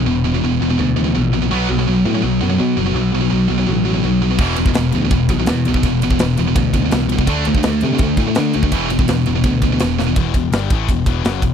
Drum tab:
CC |----------------|----------------|----------------|x---------------|
RD |----------------|----------------|----------------|--x-x-x-x-x-x-x-|
SD |----------------|----------------|----------------|----o-------o---|
BD |----------------|----------------|----------------|o--o----o-o----o|

CC |----------------|----------------|----------------|----------------|
RD |x-x-x-x-x-x-x-x-|x-x-x-x-x-x-x-x-|x-x-x-x-x-x-x---|x-x-x-x-x-x-x-x-|
SD |----o-------o---|----o-------o---|----o-------o-o-|----o-------o---|
BD |o--o----o-o----o|o--o----o-o----o|o--o----o-o-----|o-o---o-o-o---o-|